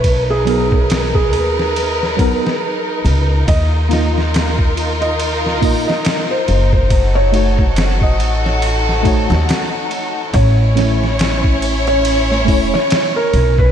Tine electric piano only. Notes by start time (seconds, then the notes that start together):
0.45 F#3 B3 D#4 A#4
2.17 F#3 B3 D#4
2.21 A#4
3.89 A#3 D#4 F4 D#5
5.61 A#3 D#4 F4 D#5
7.32 A3 D#4 F#4 C#5
9.03 A3 D#4 F#4
9.07 C#5
10.75 A3 C#4 E4 C#5
12.45 A3 C#4 E4
12.50 C#5